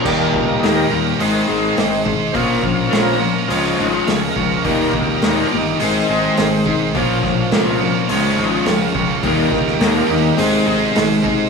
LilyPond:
<<
  \new Staff \with { instrumentName = "Distorted electric guitar" } { \time 4/4 \key ees \mixolydian \tempo 4 = 104 <ees g bes g' bes'>4. <ees g bes g' bes'>8 <aes ees' aes' c''>4. <aes ees' aes' c''>8 | <bes, f bes des' f' des''>4. <bes, f bes des' f' des''>8 <des f aes des' f' des''>4. <des f aes des' f' des''>8 | <ees g bes g' bes'>4. <ees g bes g' bes'>8 <aes ees' aes' c''>4. <aes ees' aes' c''>8 | <bes, f bes des' f' des''>4. <bes, f bes des' f' des''>8 <des f aes des' f' des''>4. <des f aes des' f' des''>8 |
<ees g bes g' bes'>4. <ees g bes g' bes'>8 <aes ees' aes' c''>4. <aes ees' aes' c''>8 | }
  \new Staff \with { instrumentName = "Steel-string acoustic guitar" } { \time 4/4 \key ees \mixolydian <ees bes ees' g'>8 <bes ees' g'>8 <ees bes ees' g'>8 <bes ees' g'>8 <aes c' ees' aes'>8 <aes c' ees' aes'>8 <aes, ees aes c' ees' aes'>8 <aes c' ees' aes'>8 | <bes, f bes des' f'>8 <bes des' f'>8 <bes, f bes des' f'>8 <bes des' f'>8 <f aes des' f'>8 <aes des' f'>8 <des f aes des' f'>8 <aes des' f'>8 | <ees bes ees' g'>8 <bes ees' g'>8 <ees bes ees' g'>8 <bes ees' g'>8 <aes c' ees' aes'>8 <aes c' ees' aes'>8 <aes, ees aes c' ees' aes'>8 <aes c' ees' aes'>8 | <bes, f bes des' f'>8 <bes des' f'>8 <bes, f bes des' f'>8 <bes des' f'>8 <f aes des' f'>8 <aes des' f'>8 <des f aes des' f'>8 <aes des' f'>8 |
<ees bes ees' g'>8 <bes ees' g'>8 <ees bes ees' g'>8 <bes ees' g'>8 <aes c' ees' aes'>8 <aes c' ees' aes'>8 <aes, ees aes c' ees' aes'>8 <aes c' ees' aes'>8 | }
  \new Staff \with { instrumentName = "Tonewheel organ" } { \time 4/4 \key ees \mixolydian <c'' des''>16 bes'16 f'16 bes'16 <a' bes'>4 r2 | <c'' des''>16 bes'16 f'16 bes'16 <a' bes'>4 r8 ees'16 f'16 aes'16 <a' bes'>8.~ | <a' bes'>4~ <a' bes'>16 f'16 ees'8 r2 | r2 r8 ees'16 f'16 aes'16 <a' bes'>8.~ |
<a' bes'>4~ <a' bes'>16 f'16 ees'8 c2 | }
  \new Staff \with { instrumentName = "Tonewheel organ" } { \clef bass \time 4/4 \key ees \mixolydian <ees g bes>4. r8 <ees aes c'>4. r8 | <f bes des'>4. r8 <f aes des'>8 r4. | <ees g bes>4. r8 <ees aes c'>8 r4. | <f bes des'>2 <f aes des'>8 r4. |
<ees g bes>2 <ees aes c'>8 r4. | }
  \new Staff \with { instrumentName = "Overdriven electric guitar" } { \clef bass \time 4/4 \key ees \mixolydian <ees g bes>8 <ees g>8 <ees g bes>8 <ees g>8 <aes, ees aes>8 <aes, ees aes>8 <aes, ees>8 <aes, ees>8 | <bes, f bes>8 <bes, f>8 <bes, f bes>8 <bes, f>8 <des f aes>8 <des f aes>8 <des f>8 <des f>8 | <ees g bes>8 <ees bes>8 <ees g bes>8 <ees bes>8 <aes ees' aes'>8 <aes ees' aes'>8 <aes ees'>8 <aes ees'>8 | <bes, f bes>8 <bes, f>8 <bes, f bes>8 <bes, f>8 <des f aes>8 <des f aes>8 <des f>8 <des f>8 |
<ees g bes>8 <ees bes>8 <ees g bes>8 <ees bes>8 <aes ees' aes'>8 <aes ees' aes'>8 <aes ees'>8 <aes ees'>8 | }
  \new Staff \with { instrumentName = "Fingered electric bass" } { \clef bass \time 4/4 \key ees \mixolydian ees,8 des,8 ees,8 ees,8 aes,,8 aes,,8 aes,,4 | bes,,8 bes,,8 bes,,4 des,8 aes,,8 des,8 des,8 | ees,8 des,8 ees,8 g,,8 aes,,8 aes,,8 aes,,4 | bes,,8 bes,,8 c,4 des,8 aes,,8 des,8 des,8 |
ees,8 des,8 ees,8 ees,8 aes,,8 aes,,8 aes,,4 | }
  \new DrumStaff \with { instrumentName = "Drums" } \drummode { \time 4/4 <cymc bd>8 bd8 <hho sn>4 hho4 <hho sn>8 bd8 | <hho bd>8 bd8 <hho sn>4 hho4 <hho sn>8 bd8 | <hho bd>8 bd8 <hho sn>4 hho4 <hho sn>8 bd8 | <hho bd>8 <bd sn>8 <hho sn>4 hho4 <hho sn>8 bd8 |
<hho bd>8 <bd sn>16 sn16 <hho sn>4 hho4 <hho sn>8 bd8 | }
>>